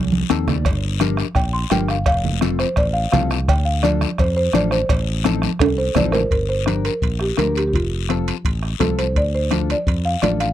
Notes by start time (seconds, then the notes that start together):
Already playing: C2
0.12 high conga
0.30 D#2 C4 D#4 A4 A5, bombo rim, cowbell, short guiro
0.48 D5, bombo rim, low conga, short guiro
0.65 G1, bombo low, bombo rim, cowbell, long guiro
1.00 D4 G4 A#4, bombo rim, cowbell, high conga, short guiro
1.17 bombo rim, short guiro
1.35 A#1 G5, bombo low, bombo rim, cowbell, long guiro
1.53 C6
1.70 G1 D4 G4 A#4 G5, bombo rim, cowbell, high conga, low timbale, short guiro
1.88 F5, bombo rim, short guiro
2.06 F1 F5, bombo low, bombo rim, cowbell, long guiro
2.25 low conga
2.41 C4 F4 A4, bombo rim, cowbell, high conga, short guiro
2.59 C5, bombo rim, short guiro
2.76 A1 D5, bombo low, bombo rim, cowbell, long guiro
2.93 F5
3.12 C2 C4 F4 A4 F5, bombo rim, cowbell, high conga, low conga, short guiro
3.31 bombo rim, short guiro
3.48 D2 G5, bombo low, bombo rim, cowbell, long guiro
3.65 F5
3.83 D4 F4 A4 D5, bombo rim, cowbell, high conga, short guiro
4.01 bombo rim, high conga, short guiro
4.18 F2 C5, bombo low, bombo rim, cowbell, long guiro
4.37 C5
4.53 A1 D4 F4 A4 D5, bombo rim, cowbell, high conga, short guiro
4.71 C5, bombo rim, short guiro
4.89 A1, bombo low, bombo rim, cowbell, long guiro
5.24 C4 D#4 A4, bombo rim, cowbell, high conga, short guiro
5.42 bombo rim, high conga, short guiro
5.59 C2 A4, bombo low, bombo rim, cowbell, high timbale, long guiro
5.78 C5
5.95 A1 C4 D#4 A4 D5, bombo low, bombo rim, cowbell, high conga, low conga, low timbale, short guiro
6.12 A#4 C5, bombo rim, low timbale, short guiro
6.31 G1 A#4, bombo low, high conga, high timbale, long guiro
6.49 C5
6.66 D4 G4 A#4, bombo rim, high conga, high timbale, short guiro
6.85 A#4, high timbale, short guiro
7.02 A#1, bombo low, high timbale, long guiro
7.20 G4, bombo rim
7.37 D2 D4 G4 A#4, bombo rim, high conga, high timbale, low timbale, short guiro
7.55 G4, high timbale, short guiro
7.67 G4
7.73 F1 F4, bombo low, high timbale, long guiro
8.09 C4 F4 A4, bombo rim, high conga, high timbale, short guiro
8.28 high timbale, short guiro
8.45 A1, bombo low, high conga, high timbale, long guiro
8.63 bombo rim
8.80 C2 C4 F4 A4, bombo low, bombo rim, high conga, high timbale, low timbale, short guiro
8.98 C5, high timbale, short guiro
9.16 D2 D5, bombo low, high conga, high timbale, long guiro
9.35 C5
9.51 D4 F4 A4, bombo rim, high conga, high timbale, short guiro
9.70 D5, high timbale, short guiro
9.87 F2, bombo low, high conga, high timbale, long guiro
10.05 F5
10.22 A1 D4 F4 A4 D5, bombo rim, high conga, high timbale, low timbale, short guiro
10.40 F5, high timbale, short guiro